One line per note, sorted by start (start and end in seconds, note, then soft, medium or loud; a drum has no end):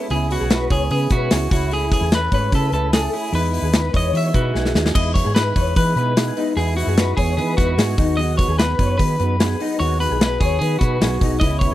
0.00 0.10 G#3 medium
0.00 0.11 B3 medium
0.00 0.11 E4 medium
0.00 0.12 G#4 medium
0.10 0.36 C#2 loud
0.10 0.51 C#3 medium
0.10 0.50 G#3 medium
0.10 0.27 B3 loud
0.10 0.50 B3 medium
0.10 0.28 C#4 medium
0.10 0.27 E4 medium
0.10 0.39 E4 loud
0.10 0.52 E4 medium
0.10 0.27 G#4 loud
0.10 0.31 G#4 medium
0.10 0.53 G#4 medium
0.10 hi-hat pedal medium
0.10 open hi-hat medium
0.30 0.48 B3 medium
0.30 0.48 C#4 medium
0.30 0.48 E4 medium
0.30 0.48 F#4 medium
0.30 0.73 F#4 medium
0.30 hi-hat pedal medium
0.30 open hi-hat medium
0.40 0.66 B1 medium
0.40 0.50 G#4 medium
0.50 0.69 G#3 medium
0.50 0.69 B3 medium
0.50 0.68 B3 medium
0.50 0.68 C#4 medium
0.50 0.68 E4 medium
0.50 0.71 E4 medium
0.50 0.72 G#4 medium
0.50 0.70 B4 medium
0.50 0.68 B4 medium
0.50 snare loud
0.50 hi-hat pedal medium
0.50 open hi-hat medium
0.70 0.88 C#2 medium
0.70 1.10 G#3 medium
0.70 1.11 B3 medium
0.70 0.88 B3 medium
0.70 0.88 C#4 medium
0.70 0.88 E4 medium
0.70 1.13 E4 medium
0.70 0.90 G#4 medium
0.70 1.13 G#4 medium
0.70 0.88 B4 medium
0.70 0.91 C#5 medium
0.70 kick medium
0.70 hi-hat pedal medium
0.70 open hi-hat medium
0.90 1.08 C#3 loud
0.90 1.08 B3 medium
0.90 1.08 C#4 medium
0.90 1.08 E4 medium
0.90 1.10 G#4 medium
0.90 1.09 G#4 medium
0.90 1.10 B4 medium
0.90 hi-hat pedal medium
0.90 open hi-hat loud
1.10 1.28 B2 loud
1.10 1.30 G#3 medium
1.10 1.31 B3 medium
1.10 1.29 B3 medium
1.10 1.29 C#4 medium
1.10 1.29 E4 medium
1.10 1.32 E4 medium
1.10 1.51 F#4 loud
1.10 1.29 G#4 loud
1.10 1.32 G#4 medium
1.10 1.31 B4 medium
1.10 kick medium
1.10 hi-hat pedal medium
1.10 open hi-hat medium
1.30 1.49 C#2 medium
1.30 1.50 G#3 medium
1.30 1.48 B3 loud
1.30 1.51 B3 medium
1.30 1.48 C#4 medium
1.30 1.48 E4 medium
1.30 1.52 E4 medium
1.30 1.48 G#4 loud
1.30 1.51 G#4 medium
1.30 snare loud
1.30 hi-hat pedal medium
1.30 open hi-hat loud
1.34 1.52 G#4 medium
1.50 1.94 C#2 loud
1.50 1.71 A3 medium
1.50 1.86 A3 medium
1.50 1.72 C#4 medium
1.50 1.86 C#4 medium
1.50 1.71 E4 medium
1.50 1.87 E4 medium
1.50 1.72 E4 medium
1.50 1.72 F#4 medium
1.50 1.87 G#4 medium
1.50 1.72 G#4 medium
1.50 kick loud
1.50 hi-hat pedal medium
1.50 open hi-hat medium
1.71 2.12 C#3 medium
1.71 2.10 A3 medium
1.71 2.11 C#4 medium
1.71 2.00 E4 loud
1.71 2.12 E4 medium
1.71 2.14 G#4 medium
1.71 1.91 G#4 loud
1.71 hi-hat pedal medium
1.71 open hi-hat medium
1.91 2.09 A3 medium
1.91 2.09 C#4 medium
1.91 2.09 E4 medium
1.91 2.11 G#4 medium
1.91 2.10 B4 medium
1.91 kick medium
1.91 hi-hat pedal medium
1.91 open hi-hat medium
2.01 2.27 E2 loud
2.01 2.12 G#4 medium
2.11 2.29 A3 medium
2.11 2.29 C#4 medium
2.11 2.30 E4 medium
2.11 2.33 G#4 medium
2.11 2.29 A4 medium
2.11 2.32 B4 medium
2.11 snare loud
2.11 hi-hat pedal medium
2.11 open hi-hat medium
2.15 2.32 B4 loud
2.31 2.49 G#2 medium
2.31 2.70 A3 medium
2.31 2.50 A3 medium
2.31 2.71 C#4 medium
2.31 2.50 C#4 medium
2.31 2.72 E4 medium
2.31 2.50 E4 medium
2.31 2.74 G#4 medium
2.31 2.50 B4 medium
2.31 2.54 B4 loud
2.31 2.53 C#5 medium
2.31 kick medium
2.31 hi-hat pedal medium
2.31 open hi-hat medium
2.52 2.69 C#3 loud
2.52 2.70 A3 medium
2.52 2.70 C#4 medium
2.52 2.70 E4 medium
2.52 2.70 G#4 medium
2.52 2.72 A4 medium
2.52 2.72 B4 medium
2.52 kick loud
2.52 hi-hat pedal medium
2.52 open hi-hat medium
2.71 3.06 C#2 medium
2.71 2.90 A3 medium
2.71 2.90 A3 loud
2.71 2.91 C#4 medium
2.71 2.90 C#4 medium
2.71 2.93 E4 medium
2.71 2.90 E4 medium
2.71 2.93 G#4 medium
2.71 2.91 G#4 loud
2.71 2.93 A4 loud
2.71 2.93 B4 medium
2.71 hi-hat pedal medium
2.71 open hi-hat medium
2.92 3.10 A3 medium
2.92 3.10 A3 loud
2.92 3.12 C#4 medium
2.92 3.10 C#4 medium
2.92 3.10 E4 medium
2.92 3.13 E4 medium
2.92 3.10 G#4 loud
2.92 3.35 G#4 medium
2.92 3.14 G#4 medium
2.92 3.13 A4 medium
2.92 snare loud
2.92 hi-hat pedal medium
2.92 open hi-hat loud
3.12 3.32 A3 medium
3.12 3.30 A3 medium
3.12 3.32 C#4 medium
3.12 3.30 C#4 medium
3.12 3.31 E4 medium
3.12 3.30 E4 medium
3.12 3.33 E4 medium
3.12 3.31 G#4 medium
3.12 3.33 G#4 medium
3.12 hi-hat pedal medium
3.12 open hi-hat medium
3.32 3.59 E2 loud
3.32 3.78 E3 medium
3.32 3.73 G#3 medium
3.32 3.50 B3 medium
3.32 3.74 B3 medium
3.32 3.50 D#4 medium
3.32 3.75 D#4 medium
3.32 3.61 E4 loud
3.32 3.51 E4 medium
3.32 3.51 G#4 loud
3.32 3.76 G#4 medium
3.32 3.96 B4 medium
3.32 hi-hat pedal medium
3.32 open hi-hat medium
3.52 3.70 B3 medium
3.52 3.70 D#4 medium
3.52 3.70 E4 medium
3.52 3.71 F#4 medium
3.52 hi-hat pedal medium
3.52 open hi-hat medium
3.62 3.88 D#2 medium
3.62 3.74 G#4 medium
3.72 3.93 G#3 medium
3.72 3.90 B3 medium
3.72 3.94 B3 medium
3.72 3.90 D#4 medium
3.72 3.95 D#4 medium
3.72 3.91 E4 medium
3.72 3.91 B4 medium
3.72 3.93 B4 medium
3.72 snare loud
3.72 hi-hat pedal medium
3.72 open hi-hat loud
3.76 3.95 G#4 medium
3.93 4.11 E2 medium
3.93 4.33 G#3 medium
3.93 4.11 B3 medium
3.93 4.35 B3 medium
3.93 4.11 D#4 medium
3.93 4.35 D#4 medium
3.93 4.11 E4 medium
3.93 4.37 G#4 medium
3.93 4.11 B4 medium
3.93 4.12 C#5 medium
3.93 4.16 D#5 loud
3.93 kick medium
3.93 hi-hat pedal medium
3.93 open hi-hat medium
4.13 4.31 E3 loud
4.13 4.31 B3 medium
4.13 4.31 D#4 medium
4.13 4.31 E4 medium
4.13 4.31 F#4 medium
4.13 4.33 C#5 medium
4.13 4.72 E5 medium
4.13 hi-hat pedal medium
4.13 open hi-hat loud
4.33 4.52 B2 medium
4.33 4.53 G#3 medium
4.33 4.51 B3 medium
4.33 4.54 B3 medium
4.33 4.51 D#4 medium
4.33 4.55 D#4 medium
4.33 4.52 E4 medium
4.33 4.52 F#4 loud
4.33 4.97 F#4 medium
4.33 4.56 G#4 medium
4.33 4.54 B4 medium
4.33 kick medium
4.33 hi-hat pedal medium
4.33 open hi-hat medium
4.54 4.72 B1 medium
4.54 4.73 G#3 medium
4.54 4.72 B3 loud
4.54 4.75 B3 medium
4.54 4.72 D#4 medium
4.54 4.76 D#4 medium
4.54 4.72 E4 medium
4.54 4.74 G#4 medium
4.54 4.72 G#4 loud
4.54 snare medium
4.58 4.76 G#4 medium
4.65 snare medium
4.75 4.92 D#2 medium
4.75 4.94 G#3 medium
4.75 4.92 B3 medium
4.75 4.95 B3 medium
4.75 4.92 D#4 medium
4.75 4.95 D#4 medium
4.75 4.92 E4 medium
4.75 4.95 G#4 medium
4.75 4.92 G#4 loud
4.75 4.96 G#4 medium
4.75 snare medium
4.86 snare medium
4.95 5.21 E2 loud
4.95 5.35 E3 medium
4.95 5.34 G#3 medium
4.95 5.12 B3 medium
4.95 5.36 B3 medium
4.95 5.12 D#4 medium
4.95 5.37 D#4 medium
4.95 5.23 E4 loud
4.95 5.12 E4 medium
4.95 5.13 G#4 loud
4.95 5.38 G#4 medium
4.95 5.14 D#5 medium
4.95 kick loud
4.95 crash medium
5.14 5.32 B3 medium
5.14 5.32 D#4 medium
5.14 5.32 E4 medium
5.14 5.32 F#4 medium
5.14 5.34 C#5 medium
5.14 kick loud
5.14 hi-hat pedal medium
5.14 open hi-hat medium
5.24 5.51 G#2 medium
5.24 5.35 G#4 medium
5.35 5.54 G#3 medium
5.35 5.53 B3 medium
5.35 5.55 B3 medium
5.35 5.53 D#4 medium
5.35 5.56 D#4 medium
5.35 5.53 E4 medium
5.35 5.53 G#4 medium
5.35 5.57 G#4 medium
5.35 5.75 B4 medium
5.35 5.55 B4 medium
5.35 snare loud
5.35 hi-hat pedal medium
5.35 open hi-hat medium
5.55 5.73 E2 medium
5.55 5.96 G#3 medium
5.55 5.73 B3 medium
5.55 5.97 B3 medium
5.55 5.74 D#4 medium
5.55 5.98 D#4 medium
5.55 5.73 E4 medium
5.55 5.99 G#4 medium
5.55 5.74 B4 medium
5.55 5.76 C#5 medium
5.55 kick medium
5.55 hi-hat pedal medium
5.55 open hi-hat medium
5.76 5.93 E3 loud
5.76 5.94 B3 medium
5.76 5.94 D#4 medium
5.76 5.94 E4 medium
5.76 5.94 G#4 medium
5.76 6.53 B4 medium
5.76 5.95 B4 medium
5.76 kick loud
5.76 hi-hat pedal medium
5.76 open hi-hat loud
5.96 6.30 B2 medium
5.96 6.16 G#3 medium
5.96 6.13 B3 loud
5.96 6.17 B3 medium
5.96 6.14 D#4 medium
5.96 6.17 D#4 medium
5.96 6.14 E4 medium
5.96 6.14 G#4 loud
5.96 6.18 G#4 medium
5.96 6.16 B4 medium
5.96 hi-hat pedal medium
5.96 open hi-hat medium
6.17 6.36 G#3 medium
6.17 6.34 B3 loud
6.17 6.37 B3 medium
6.17 6.34 D#4 medium
6.17 6.38 D#4 medium
6.17 6.34 E4 medium
6.17 6.34 F#4 loud
6.17 6.37 G#4 medium
6.17 snare loud
6.17 hi-hat pedal medium
6.17 open hi-hat loud
6.21 6.39 G#4 medium
6.36 6.56 G#3 medium
6.36 6.54 B3 medium
6.36 6.57 B3 medium
6.36 6.54 D#4 medium
6.36 6.57 D#4 medium
6.36 6.54 E4 medium
6.36 6.58 G#4 medium
6.36 6.54 B4 loud
6.36 hi-hat pedal medium
6.36 open hi-hat medium
6.56 6.82 E2 loud
6.56 6.97 E3 medium
6.56 6.96 G#3 medium
6.56 6.74 B3 loud
6.56 6.97 B3 medium
6.56 6.74 D#4 medium
6.56 6.98 D#4 loud
6.56 6.74 E4 medium
6.56 6.86 E4 loud
6.56 6.74 F#4 loud
6.56 6.75 G#4 medium
6.56 6.99 G#4 medium
6.56 hi-hat pedal medium
6.56 open hi-hat medium
6.77 6.94 B3 medium
6.77 6.94 D#4 medium
6.77 6.95 E4 medium
6.77 7.16 F#4 medium
6.77 6.95 B4 medium
6.77 hi-hat pedal medium
6.77 open hi-hat medium
6.87 7.13 F#2 medium
6.87 6.98 G#4 medium
6.97 7.15 G#3 medium
6.97 7.15 B3 medium
6.97 7.16 B3 medium
6.97 7.15 D#4 medium
6.97 7.17 D#4 medium
6.97 7.15 E4 medium
6.97 7.18 G#4 medium
6.97 7.15 B4 medium
6.97 7.18 B4 medium
6.97 snare loud
6.97 hi-hat pedal medium
6.97 open hi-hat medium
7.16 7.39 E2 medium
7.16 7.56 G#3 medium
7.16 7.34 B3 medium
7.16 7.57 B3 medium
7.16 7.34 D#4 medium
7.16 7.58 D#4 medium
7.16 7.34 E4 medium
7.16 7.35 F#4 medium
7.16 7.36 G#4 medium
7.16 7.59 G#4 medium
7.16 7.38 C#5 medium
7.16 kick medium
7.16 hi-hat pedal medium
7.16 open hi-hat medium
7.37 7.54 E3 loud
7.37 7.55 B3 medium
7.37 7.55 D#4 medium
7.37 7.55 E4 medium
7.37 7.56 G#4 medium
7.37 7.57 B4 medium
7.37 7.55 B4 medium
7.37 hi-hat pedal medium
7.37 open hi-hat loud
7.57 7.75 E2 medium
7.57 7.75 G#3 medium
7.57 7.75 B3 loud
7.57 7.76 B3 medium
7.57 7.75 D#4 medium
7.57 7.77 D#4 medium
7.57 7.75 E4 medium
7.57 8.20 F#4 medium
7.57 7.75 F#4 loud
7.57 7.78 G#4 medium
7.57 7.78 B4 medium
7.57 kick loud
7.57 hi-hat pedal medium
7.57 open hi-hat medium
7.76 7.95 G#2 loud
7.76 7.96 G#3 medium
7.76 7.97 B3 medium
7.76 7.95 B3 loud
7.76 7.95 D#4 medium
7.76 7.98 D#4 medium
7.76 7.95 E4 loud
7.76 7.98 G#4 medium
7.76 7.95 G#4 loud
7.76 7.99 G#4 medium
7.76 snare loud
7.76 hi-hat pedal medium
7.76 open hi-hat loud
7.96 8.41 D#2 medium
7.96 8.16 F#3 medium
7.96 8.32 B3 medium
7.96 8.17 B3 medium
7.96 8.32 D#4 medium
7.96 8.18 D#4 medium
7.96 8.32 F#4 medium
7.96 8.32 G#4 medium
7.96 8.18 G#4 medium
7.96 kick loud
7.96 hi-hat pedal medium
7.96 open hi-hat medium
8.17 8.58 D#3 medium
8.17 8.56 F#3 medium
8.17 8.59 B3 medium
8.17 8.59 D#4 medium
8.17 8.47 F#4 loud
8.17 8.61 G#4 medium
8.17 8.37 D#5 loud
8.17 hi-hat pedal medium
8.17 open hi-hat medium
8.37 8.56 B3 medium
8.37 8.56 D#4 medium
8.37 8.56 F#4 medium
8.37 8.55 B4 medium
8.37 8.58 C#5 medium
8.37 kick medium
8.37 hi-hat pedal medium
8.37 open hi-hat medium
8.48 8.74 D#2 loud
8.48 8.59 G#4 medium
8.57 8.77 F#3 medium
8.57 8.75 B3 medium
8.57 8.76 D#4 medium
8.57 8.79 D#4 medium
8.57 8.75 F#4 medium
8.57 8.76 G#4 medium
8.57 8.96 B4 medium
8.57 8.79 B4 medium
8.57 snare loud
8.57 hi-hat pedal medium
8.57 open hi-hat medium
8.61 8.80 G#4 medium
8.78 8.96 F#2 medium
8.78 9.18 F#3 medium
8.78 8.96 B3 medium
8.78 9.20 B3 medium
8.78 8.96 D#4 medium
8.78 9.20 D#4 medium
8.78 8.96 F#4 medium
8.78 9.22 G#4 medium
8.78 8.96 B4 medium
8.78 8.99 C#5 medium
8.78 kick medium
8.78 hi-hat pedal medium
8.78 open hi-hat medium
8.98 9.16 D#3 loud
8.98 9.16 B3 medium
8.98 9.16 D#4 medium
8.98 9.16 F#4 medium
8.98 9.16 G#4 medium
8.98 9.79 B4 medium
8.98 9.18 B4 medium
8.98 kick medium
8.98 hi-hat pedal medium
8.98 open hi-hat medium
9.19 9.54 F#2 medium
9.19 9.38 F#3 medium
9.19 9.37 B3 loud
9.19 9.40 B3 medium
9.19 9.37 D#4 medium
9.19 9.41 D#4 medium
9.19 9.37 F#4 medium
9.19 9.41 G#4 medium
9.19 9.40 B4 medium
9.19 9.37 B4 loud
9.19 hi-hat pedal medium
9.19 open hi-hat medium
9.40 9.59 F#3 medium
9.40 9.57 B3 loud
9.40 9.60 B3 medium
9.40 9.57 D#4 medium
9.40 9.61 D#4 medium
9.40 9.57 F#4 loud
9.40 9.60 G#4 medium
9.40 9.61 G#4 medium
9.40 9.57 B4 loud
9.40 snare loud
9.40 hi-hat pedal medium
9.40 open hi-hat loud
9.60 9.79 F#3 medium
9.60 9.77 B3 medium
9.60 9.79 B3 medium
9.60 9.77 D#4 medium
9.60 9.80 D#4 medium
9.60 9.78 F#4 medium
9.60 9.78 G#4 loud
9.60 9.81 G#4 medium
9.60 hi-hat pedal medium
9.60 open hi-hat medium
9.79 10.06 D#2 loud
9.79 10.20 D#3 medium
9.79 10.17 F#3 medium
9.79 9.97 B3 medium
9.79 10.19 B3 medium
9.79 10.19 D#4 medium
9.79 9.98 D#4 medium
9.79 10.08 F#4 loud
9.79 9.98 F#4 medium
9.79 9.98 G#4 loud
9.79 10.21 G#4 medium
9.79 9.98 C#5 loud
9.79 hi-hat pedal medium
9.79 open hi-hat medium
10.00 10.18 B3 medium
10.00 10.18 D#4 medium
10.00 10.18 F#4 medium
10.00 10.18 G#4 medium
10.00 10.38 B4 loud
10.00 hi-hat pedal medium
10.00 open hi-hat medium
10.10 10.36 B1 medium
10.10 10.21 G#4 medium
10.18 10.38 F#3 medium
10.18 10.39 B3 medium
10.18 10.38 B3 medium
10.18 10.40 D#4 medium
10.18 10.38 D#4 medium
10.18 10.38 F#4 medium
10.18 10.38 G#4 medium
10.18 10.41 G#4 medium
10.18 10.41 B4 medium
10.18 snare loud
10.18 hi-hat pedal medium
10.18 open hi-hat medium
10.39 10.58 D#2 medium
10.39 10.78 F#3 medium
10.39 10.58 B3 medium
10.39 10.80 B3 medium
10.39 10.58 D#4 medium
10.39 10.80 D#4 medium
10.39 10.58 F#4 medium
10.39 10.58 G#4 medium
10.39 10.58 B4 medium
10.39 10.61 C#5 medium
10.39 kick loud
10.39 hi-hat pedal medium
10.39 open hi-hat medium
10.59 10.78 D#3 loud
10.59 10.78 B3 medium
10.59 10.78 D#4 medium
10.59 10.79 F#4 medium
10.59 10.78 G#4 medium
10.59 10.79 B4 medium
10.59 10.81 B4 medium
10.59 hi-hat pedal medium
10.59 open hi-hat loud
10.79 11.02 B2 loud
10.79 10.98 F#3 medium
10.79 10.98 B3 loud
10.79 11.00 B3 medium
10.79 10.98 D#4 medium
10.79 11.00 D#4 medium
10.79 11.36 F#4 medium
10.79 10.98 F#4 medium
10.79 10.98 G#4 loud
10.79 11.01 G#4 medium
10.79 11.02 B4 medium
10.79 kick medium
10.79 hi-hat pedal medium
10.79 open hi-hat medium
10.99 11.18 B1 medium
10.99 11.18 F#3 medium
10.99 11.18 B3 loud
10.99 11.20 B3 medium
10.99 11.18 D#4 medium
10.99 11.21 D#4 medium
10.99 11.18 F#4 medium
10.99 11.22 G#4 medium
10.99 11.18 B4 loud
10.99 snare loud
10.99 hi-hat pedal medium
10.99 open hi-hat loud
11.20 11.38 B1 medium
11.20 11.41 F#3 medium
11.20 11.38 B3 medium
11.20 11.41 B3 medium
11.20 11.38 D#4 medium
11.20 11.41 D#4 medium
11.20 11.42 D#4 medium
11.20 11.39 F#4 medium
11.20 11.38 G#4 medium
11.20 11.42 G#4 medium
11.20 kick medium
11.20 hi-hat pedal medium
11.20 open hi-hat medium
11.40 11.67 C#2 loud
11.40 11.74 C#3 medium
11.40 11.74 G#3 medium
11.40 11.59 B3 medium
11.40 11.74 B3 medium
11.40 11.58 C#4 medium
11.40 11.59 E4 medium
11.40 11.74 E4 medium
11.40 11.70 E4 loud
11.40 11.59 G#4 loud
11.40 11.74 G#4 medium
11.40 11.59 D#5 loud
11.40 kick loud
11.40 hi-hat pedal medium
11.40 open hi-hat medium
11.59 11.74 B3 medium
11.59 11.74 C#4 medium
11.59 11.74 E4 medium
11.59 11.74 F#4 medium
11.59 11.74 C#5 medium
11.59 kick medium
11.59 hi-hat pedal medium
11.59 open hi-hat medium